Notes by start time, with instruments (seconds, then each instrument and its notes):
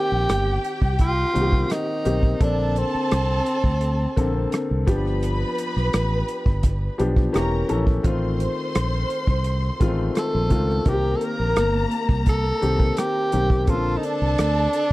Already playing: grand piano D#3 A#3 C4 G4, tenor saxophone G4, string section G4 G5
0.12 fingered electric bass A#1
0.29 fingered electric bass G1, cross-stick, closed hi-hat
0.64 closed hi-hat
0.82 fingered electric bass C2, kick
0.99 tenor saxophone F4, kick, closed hi-hat
1.33 fingered electric bass C2, grand piano D#3 A#3 C4 F#4, closed hi-hat
1.41 grand piano G4
1.52 kick
1.70 tenor saxophone D#4, cross-stick, closed hi-hat
2.04 fingered electric bass B1, grand piano D#3 A#3 C4 G4, closed hi-hat
2.23 kick
2.40 fingered electric bass A#1, grand piano D3 A#3 C4 A4, tenor saxophone D4, string section A4 A5, kick, closed hi-hat
2.76 tenor saxophone C4, closed hi-hat
2.95 muted fingered electric bass stroke
3.11 fingered electric bass C2, cross-stick, closed hi-hat
3.46 closed hi-hat
3.64 fingered electric bass D2, kick
3.81 closed hi-hat
4.16 fingered electric bass A#1, grand piano D3 A#3 C4 A4, kick, closed hi-hat
4.52 cross-stick, closed hi-hat
4.71 fingered electric bass C2
4.87 fingered electric bass G1, grand piano F3 B3 D4 G4, string section B4 B5, kick, closed hi-hat
5.07 cross-stick
5.23 closed hi-hat
5.58 closed hi-hat
5.76 fingered electric bass B1, cross-stick
5.93 fingered electric bass A1, cross-stick, closed hi-hat
6.28 closed hi-hat
6.46 fingered electric bass G1, kick
6.63 kick, closed hi-hat
6.98 fingered electric bass B1, grand piano F3 B3 D4 G4, closed hi-hat
7.16 kick
7.33 fingered electric bass E1, grand piano E3 A#3 C#4 G4, string section A#4 A#5, cross-stick, closed hi-hat
7.68 fingered electric bass A#1, grand piano E3 A#3 C#4 A4, closed hi-hat
7.87 kick
8.03 fingered electric bass A1, grand piano D#3 A3 C4 F4, string section C5 C6, kick, closed hi-hat
8.40 closed hi-hat
8.75 fingered electric bass A#1, cross-stick, closed hi-hat
9.10 closed hi-hat
9.27 fingered electric bass C2, kick
9.44 closed hi-hat
9.80 fingered electric bass A1, grand piano D#3 G#3 C4 F4, kick, closed hi-hat
9.87 grand piano A3
10.15 tenor saxophone A4, cross-stick, closed hi-hat
10.35 fingered electric bass A#1
10.50 fingered electric bass C#2, grand piano D#3 A3 C4 F4, kick, closed hi-hat
10.70 cross-stick
10.86 fingered electric bass C2, grand piano D#3 A#3 C4 F4, string section A#3 A#5, tenor saxophone G4, kick, closed hi-hat
10.93 grand piano G4
11.16 tenor saxophone A4
11.21 tenor saxophone A#4, closed hi-hat
11.40 fingered electric bass A#1
11.56 fingered electric bass G1, cross-stick, closed hi-hat
11.91 closed hi-hat
12.09 fingered electric bass C2, kick
12.26 tenor saxophone A4, kick, closed hi-hat
12.61 fingered electric bass C2, grand piano D#3 A#3 C4 G4, closed hi-hat
12.80 kick
12.97 tenor saxophone G4, cross-stick, closed hi-hat
13.32 fingered electric bass B1, grand piano D#3 A#3 C4 G4, closed hi-hat
13.50 kick
13.63 grand piano C#3, tenor saxophone G4
13.67 fingered electric bass A#1, grand piano A#3 C4 A4, tenor saxophone F4, string section A4 A5, kick, closed hi-hat
13.73 grand piano D3
13.97 tenor saxophone D#4
14.03 tenor saxophone D4, closed hi-hat
14.22 fingered electric bass C2
14.38 fingered electric bass D2, cross-stick, closed hi-hat
14.73 closed hi-hat